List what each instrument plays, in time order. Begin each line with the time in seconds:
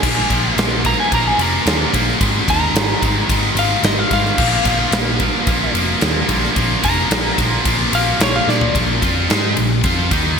Already playing: lead electric guitar G#5
0.03 picked electric bass A#1, distorted electric guitar A#2 F3 A#3, kick, crash
0.30 picked electric bass A#1, distorted electric guitar A#2 F3 A#3, kick, ride
0.56 picked electric bass A#1, distorted electric guitar A#2 F3 A#3, snare, ride
0.85 distorted electric guitar A#2 F3 A#3, lead electric guitar A#5, kick, ride
1.00 lead electric guitar G#5
1.12 picked electric bass A#1, distorted electric guitar A#2 F3 A#3, lead electric guitar A#5, kick, ride
1.27 lead electric guitar G#5
1.39 picked electric bass F1, distorted electric guitar A#2 F3 A#3, lead electric guitar A#5, ride
1.66 picked electric bass D#2, distorted electric guitar A#2 F3 A#3, snare, ride
1.93 picked electric bass A#1, distorted electric guitar A#2 F3 A#3, kick, ride
2.09 snare
2.20 picked electric bass G#1, distorted electric guitar G#2 D#3 G#3, kick, ride
2.48 picked electric bass D#2, distorted electric guitar G#2 D#3 G#3, lead electric guitar A#5, kick, ride
2.74 picked electric bass G#1, distorted electric guitar G#2 D#3 G#3, snare, ride
3.02 picked electric bass G#1, distorted electric guitar G#2 D#3 G#3, kick, ride
3.28 picked electric bass G#1, distorted electric guitar G#2 D#3 G#3, kick, ride
3.55 picked electric bass G#1, distorted electric guitar G#2 D#3 G#3, lead electric guitar F5, ride
3.83 picked electric bass G#1, distorted electric guitar G#2 D#3 G#3, lead electric guitar D#5, snare, ride
3.99 lead electric guitar F5
4.11 picked electric bass G#2, distorted electric guitar G#2 D#3 G#3, lead electric guitar F5, kick, snare, ride
4.25 snare
4.38 picked electric bass A#1, distorted electric guitar A#2 F3 A#3, kick, crash
4.65 picked electric bass A#1, distorted electric guitar A#2 F3 A#3, kick, ride
4.92 picked electric bass A#1, distorted electric guitar A#2 F3 A#3, snare, ride
5.20 distorted electric guitar A#2 F3 A#3, kick, ride
5.47 picked electric bass A#1, distorted electric guitar A#2 F3 A#3, kick, ride
5.74 picked electric bass F1, distorted electric guitar A#2 F3 A#3, ride
6.01 picked electric bass D#2, distorted electric guitar A#2 F3 A#3, snare, ride
6.28 picked electric bass A#1, distorted electric guitar A#2 F3 A#3, kick, snare, ride
6.44 snare
6.56 picked electric bass A#1, distorted electric guitar A#2 F3 A#3, kick, ride
6.83 picked electric bass F1, distorted electric guitar A#2 F3 A#3, lead electric guitar A#5, kick, ride
7.11 picked electric bass A#1, distorted electric guitar A#2 F3 A#3, snare, ride
7.38 picked electric bass A#1, distorted electric guitar A#2 F3 A#3, kick, ride
7.65 picked electric bass A#1, distorted electric guitar A#2 F3 A#3, kick, ride
7.93 picked electric bass A#1, distorted electric guitar A#2 F3 A#3, lead electric guitar F5, ride
8.20 picked electric bass A#1, distorted electric guitar A#2 F3 A#3, lead electric guitar C#5, snare, ride
8.36 lead electric guitar F5
8.48 picked electric bass A#2, distorted electric guitar A#2 F3 A#3, lead electric guitar D5, snare
8.61 floor tom
8.75 picked electric bass A#1, distorted electric guitar A#2 F3 A#3, kick, ride
9.02 picked electric bass F2, distorted electric guitar F3 C4 F4, kick, ride
9.29 picked electric bass G#2, distorted electric guitar G#3 D#4 G#4, snare, ride
9.57 picked electric bass A#1, distorted electric guitar A#2 F3, ride
9.84 picked electric bass F2, distorted electric guitar F3 C4 F4, kick, ride
10.11 picked electric bass D#2, distorted electric guitar D#3 A#3 D#4, kick, ride